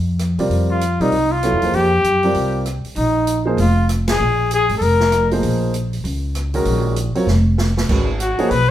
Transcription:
Already playing: F2
0.19 cross-stick, closed hi-hat
0.38 C3 G3 C4 F4 A#4 D5, open hi-hat
0.50 F2, open hi-hat
0.70 F4
0.81 closed hi-hat
1.00 C3 G3 C4 D#4 F4 A#4 D5, open hi-hat
1.11 C2, open hi-hat
1.32 F4
1.43 F#3 B3 E4 A4 C#5, cross-stick, closed hi-hat
1.53 F2
1.62 D#2 F3 A#3 D#4 G#4 C5, open hi-hat
1.73 F2 G4, open hi-hat
2.04 F#2, closed hi-hat
2.23 G3 C4 F4 A#4 D5, open hi-hat
2.35 C2, open hi-hat
2.66 cross-stick, closed hi-hat
2.84 muted upright bass stroke, open hi-hat
2.96 A#1 D#4, open hi-hat
3.27 closed hi-hat
3.45 F3 A#3 D#4 G#4 C5
3.57 F1 F4, open hi-hat
3.89 cross-stick, closed hi-hat
4.08 G#4, snare, ride
4.19 A#1
4.51 G#4, closed hi-hat
4.69 G#1, open hi-hat
4.78 F1 A4
4.82 A#4, open hi-hat
5.00 snare
5.12 cross-stick, closed hi-hat
5.31 F3 A#3 D#4 G#4 C5, open hi-hat
5.43 A#1, open hi-hat
5.74 closed hi-hat
5.93 open hi-hat
6.04 C#2, open hi-hat
6.35 cross-stick, closed hi-hat
6.54 D#3 G#3 C#4 F#4 A#4, open hi-hat
6.65 A#1, open hi-hat
6.96 closed hi-hat
7.15 F#3 C4 F4 A#4 C#5, muted upright bass stroke, open hi-hat
7.27 F1, snare
7.58 snare
7.77 snare
7.89 G#1 D#3 G#3 C#4 F#4 B4, kick, crash
8.20 F#4, closed hi-hat
8.39 F3 A#3 D#4 G#4 C#5, muted upright bass stroke, open hi-hat
8.50 B1 B4, open hi-hat

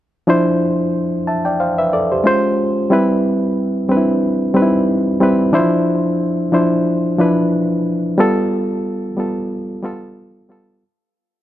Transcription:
0.27 F3 D4 E4 C5
1.27 E5 A5
1.45 D5 G5
1.60 C5 F5
1.78 B4 E5
1.93 A4 D5
2.12 G4 C5
2.24 G#3 C#4 F4 C5
2.90 G3 C4 E4 B4
3.89 G3 C4 D4 B4
3.97 E4
4.54 G3 C4 D#4 B4
4.62 E4
5.20 G3 C4 E4 B4
5.52 E3 D4 E4 C5
5.59 F3
6.52 F3 D4 E4 C5
7.18 F3 D4 E4 B4
8.18 G3 B3 F4 A4
9.17 G3 B3 F4 A4
9.83 G3 B3 F4 A4
10.49 G3 B3 F4 A4

